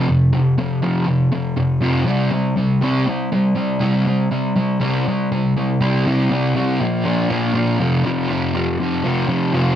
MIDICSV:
0, 0, Header, 1, 2, 480
1, 0, Start_track
1, 0, Tempo, 497925
1, 56, Time_signature, 4, 2, 24, 8
1, 9403, End_track
2, 0, Start_track
2, 0, Title_t, "Distorted electric guitar"
2, 0, Program_c, 0, 30
2, 81, Note_on_c, 0, 41, 65
2, 82, Note_on_c, 0, 48, 75
2, 286, Note_off_c, 0, 41, 0
2, 286, Note_off_c, 0, 48, 0
2, 315, Note_on_c, 0, 41, 64
2, 319, Note_on_c, 0, 48, 71
2, 523, Note_off_c, 0, 41, 0
2, 525, Note_off_c, 0, 48, 0
2, 560, Note_on_c, 0, 41, 72
2, 562, Note_on_c, 0, 48, 82
2, 767, Note_off_c, 0, 41, 0
2, 768, Note_off_c, 0, 48, 0
2, 797, Note_on_c, 0, 41, 82
2, 802, Note_on_c, 0, 48, 95
2, 809, Note_on_c, 0, 53, 83
2, 1016, Note_off_c, 0, 41, 0
2, 1018, Note_off_c, 0, 48, 0
2, 1021, Note_off_c, 0, 53, 0
2, 1030, Note_on_c, 0, 41, 61
2, 1035, Note_on_c, 0, 48, 66
2, 1243, Note_off_c, 0, 41, 0
2, 1246, Note_off_c, 0, 48, 0
2, 1272, Note_on_c, 0, 41, 69
2, 1273, Note_on_c, 0, 48, 77
2, 1485, Note_off_c, 0, 41, 0
2, 1485, Note_off_c, 0, 48, 0
2, 1510, Note_on_c, 0, 41, 69
2, 1511, Note_on_c, 0, 48, 81
2, 1725, Note_off_c, 0, 41, 0
2, 1725, Note_off_c, 0, 48, 0
2, 1743, Note_on_c, 0, 41, 81
2, 1749, Note_on_c, 0, 48, 74
2, 1751, Note_on_c, 0, 53, 81
2, 1968, Note_off_c, 0, 48, 0
2, 1971, Note_off_c, 0, 41, 0
2, 1976, Note_off_c, 0, 53, 0
2, 1979, Note_on_c, 0, 48, 92
2, 1989, Note_on_c, 0, 55, 86
2, 1999, Note_on_c, 0, 60, 89
2, 2210, Note_off_c, 0, 48, 0
2, 2215, Note_off_c, 0, 55, 0
2, 2220, Note_off_c, 0, 60, 0
2, 2228, Note_on_c, 0, 48, 65
2, 2232, Note_on_c, 0, 55, 74
2, 2446, Note_off_c, 0, 48, 0
2, 2448, Note_off_c, 0, 55, 0
2, 2468, Note_on_c, 0, 48, 70
2, 2474, Note_on_c, 0, 55, 73
2, 2686, Note_off_c, 0, 48, 0
2, 2689, Note_off_c, 0, 55, 0
2, 2709, Note_on_c, 0, 48, 81
2, 2712, Note_on_c, 0, 55, 83
2, 2724, Note_on_c, 0, 60, 89
2, 2937, Note_off_c, 0, 48, 0
2, 2939, Note_off_c, 0, 55, 0
2, 2945, Note_off_c, 0, 60, 0
2, 2960, Note_on_c, 0, 48, 63
2, 2964, Note_on_c, 0, 55, 68
2, 3173, Note_off_c, 0, 48, 0
2, 3176, Note_off_c, 0, 55, 0
2, 3205, Note_on_c, 0, 48, 65
2, 3209, Note_on_c, 0, 55, 68
2, 3417, Note_off_c, 0, 48, 0
2, 3418, Note_off_c, 0, 55, 0
2, 3433, Note_on_c, 0, 48, 67
2, 3439, Note_on_c, 0, 55, 78
2, 3651, Note_off_c, 0, 48, 0
2, 3654, Note_off_c, 0, 55, 0
2, 3667, Note_on_c, 0, 48, 86
2, 3675, Note_on_c, 0, 55, 84
2, 3683, Note_on_c, 0, 60, 94
2, 3898, Note_off_c, 0, 48, 0
2, 3902, Note_off_c, 0, 55, 0
2, 3906, Note_off_c, 0, 60, 0
2, 3917, Note_on_c, 0, 48, 75
2, 3925, Note_on_c, 0, 55, 84
2, 4134, Note_off_c, 0, 48, 0
2, 4137, Note_off_c, 0, 55, 0
2, 4164, Note_on_c, 0, 48, 58
2, 4165, Note_on_c, 0, 55, 72
2, 4377, Note_off_c, 0, 48, 0
2, 4378, Note_off_c, 0, 55, 0
2, 4402, Note_on_c, 0, 48, 64
2, 4408, Note_on_c, 0, 55, 81
2, 4616, Note_off_c, 0, 48, 0
2, 4619, Note_off_c, 0, 55, 0
2, 4630, Note_on_c, 0, 48, 92
2, 4637, Note_on_c, 0, 55, 90
2, 4646, Note_on_c, 0, 60, 91
2, 4860, Note_off_c, 0, 48, 0
2, 4864, Note_off_c, 0, 55, 0
2, 4868, Note_off_c, 0, 60, 0
2, 4897, Note_on_c, 0, 48, 59
2, 4899, Note_on_c, 0, 55, 68
2, 5104, Note_off_c, 0, 48, 0
2, 5105, Note_off_c, 0, 55, 0
2, 5126, Note_on_c, 0, 48, 62
2, 5129, Note_on_c, 0, 55, 71
2, 5338, Note_off_c, 0, 48, 0
2, 5340, Note_off_c, 0, 55, 0
2, 5366, Note_on_c, 0, 48, 67
2, 5373, Note_on_c, 0, 55, 70
2, 5578, Note_off_c, 0, 48, 0
2, 5581, Note_off_c, 0, 55, 0
2, 5596, Note_on_c, 0, 48, 88
2, 5604, Note_on_c, 0, 55, 77
2, 5608, Note_on_c, 0, 60, 86
2, 5822, Note_off_c, 0, 48, 0
2, 5826, Note_off_c, 0, 55, 0
2, 5829, Note_off_c, 0, 60, 0
2, 5845, Note_on_c, 0, 48, 110
2, 5848, Note_on_c, 0, 55, 112
2, 5853, Note_on_c, 0, 60, 118
2, 6066, Note_off_c, 0, 48, 0
2, 6069, Note_off_c, 0, 55, 0
2, 6078, Note_off_c, 0, 60, 0
2, 6078, Note_on_c, 0, 48, 83
2, 6081, Note_on_c, 0, 55, 85
2, 6090, Note_on_c, 0, 60, 81
2, 6306, Note_off_c, 0, 48, 0
2, 6312, Note_off_c, 0, 55, 0
2, 6317, Note_off_c, 0, 60, 0
2, 6317, Note_on_c, 0, 48, 98
2, 6324, Note_on_c, 0, 55, 100
2, 6329, Note_on_c, 0, 60, 115
2, 6542, Note_off_c, 0, 48, 0
2, 6545, Note_off_c, 0, 55, 0
2, 6547, Note_off_c, 0, 60, 0
2, 6558, Note_on_c, 0, 46, 99
2, 6561, Note_on_c, 0, 53, 102
2, 6565, Note_on_c, 0, 58, 100
2, 6783, Note_off_c, 0, 46, 0
2, 6789, Note_off_c, 0, 53, 0
2, 6790, Note_off_c, 0, 58, 0
2, 6793, Note_on_c, 0, 53, 89
2, 6795, Note_on_c, 0, 46, 86
2, 6802, Note_on_c, 0, 58, 106
2, 7021, Note_off_c, 0, 46, 0
2, 7029, Note_off_c, 0, 53, 0
2, 7031, Note_off_c, 0, 58, 0
2, 7033, Note_on_c, 0, 46, 95
2, 7033, Note_on_c, 0, 53, 94
2, 7043, Note_on_c, 0, 58, 100
2, 7257, Note_off_c, 0, 46, 0
2, 7268, Note_on_c, 0, 46, 106
2, 7271, Note_off_c, 0, 58, 0
2, 7273, Note_off_c, 0, 53, 0
2, 7277, Note_on_c, 0, 53, 110
2, 7283, Note_on_c, 0, 58, 111
2, 7494, Note_off_c, 0, 46, 0
2, 7501, Note_off_c, 0, 58, 0
2, 7509, Note_on_c, 0, 41, 106
2, 7514, Note_off_c, 0, 53, 0
2, 7518, Note_on_c, 0, 48, 105
2, 7518, Note_on_c, 0, 53, 96
2, 7741, Note_off_c, 0, 41, 0
2, 7744, Note_off_c, 0, 48, 0
2, 7752, Note_on_c, 0, 41, 99
2, 7756, Note_on_c, 0, 48, 112
2, 7760, Note_off_c, 0, 53, 0
2, 7764, Note_on_c, 0, 53, 121
2, 7975, Note_off_c, 0, 41, 0
2, 7978, Note_off_c, 0, 48, 0
2, 7986, Note_on_c, 0, 41, 88
2, 7990, Note_on_c, 0, 48, 93
2, 7991, Note_off_c, 0, 53, 0
2, 7995, Note_on_c, 0, 53, 101
2, 8215, Note_off_c, 0, 41, 0
2, 8222, Note_off_c, 0, 48, 0
2, 8227, Note_on_c, 0, 41, 94
2, 8234, Note_on_c, 0, 48, 100
2, 8235, Note_off_c, 0, 53, 0
2, 8239, Note_on_c, 0, 53, 104
2, 8458, Note_off_c, 0, 41, 0
2, 8466, Note_off_c, 0, 48, 0
2, 8470, Note_on_c, 0, 41, 81
2, 8478, Note_on_c, 0, 48, 93
2, 8482, Note_off_c, 0, 53, 0
2, 8485, Note_on_c, 0, 53, 100
2, 8696, Note_off_c, 0, 41, 0
2, 8699, Note_off_c, 0, 48, 0
2, 8707, Note_on_c, 0, 41, 90
2, 8711, Note_on_c, 0, 48, 96
2, 8716, Note_off_c, 0, 53, 0
2, 8720, Note_on_c, 0, 53, 100
2, 8927, Note_off_c, 0, 41, 0
2, 8938, Note_off_c, 0, 48, 0
2, 8938, Note_on_c, 0, 41, 85
2, 8950, Note_on_c, 0, 48, 92
2, 8951, Note_off_c, 0, 53, 0
2, 8955, Note_on_c, 0, 53, 101
2, 9174, Note_off_c, 0, 41, 0
2, 9179, Note_off_c, 0, 48, 0
2, 9186, Note_on_c, 0, 41, 110
2, 9190, Note_on_c, 0, 48, 96
2, 9195, Note_off_c, 0, 53, 0
2, 9199, Note_on_c, 0, 53, 113
2, 9403, Note_off_c, 0, 41, 0
2, 9403, Note_off_c, 0, 48, 0
2, 9403, Note_off_c, 0, 53, 0
2, 9403, End_track
0, 0, End_of_file